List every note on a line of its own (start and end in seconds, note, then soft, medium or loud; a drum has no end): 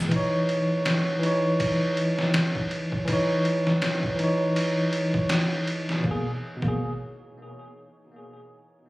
0.00 0.13 B2 medium
0.00 0.13 A#3 medium
0.00 0.13 G#4 medium
0.09 1.17 E3 loud
0.09 1.19 D#4 medium
0.09 kick loud
0.09 ride medium
0.16 1.21 C#5 loud
0.49 ride medium
0.85 snare loud
0.85 ride medium
1.19 3.02 E3 medium
1.19 3.04 D#4 medium
1.23 3.06 C#5 medium
1.23 ride medium
1.60 kick loud
1.60 ride medium
1.97 ride medium
2.19 snare medium
2.34 snare loud
2.34 ride medium
2.55 kick loud
2.71 ride medium
2.92 kick medium
3.05 4.14 E3 medium
3.05 4.16 D#4 medium
3.05 kick loud
3.05 ride medium
3.13 4.18 C#5 medium
3.45 ride medium
3.67 snare soft
3.82 snare loud
3.82 ride medium
4.03 kick medium
4.16 5.99 E3 medium
4.16 6.01 D#4 medium
4.16 ride medium
4.24 6.03 C#5 medium
4.56 ride medium
4.93 ride medium
5.14 kick loud
5.29 snare loud
5.29 ride medium
5.67 ride medium
5.89 snare soft
6.00 6.24 B2 medium
6.04 6.27 G#1 medium
6.04 6.28 A#3 medium
6.04 kick loud
6.11 6.30 G#4 loud
6.57 6.86 B2 medium
6.62 6.97 G#1 loud
6.62 6.89 A#3 medium
6.62 kick loud
6.68 6.92 G#4 medium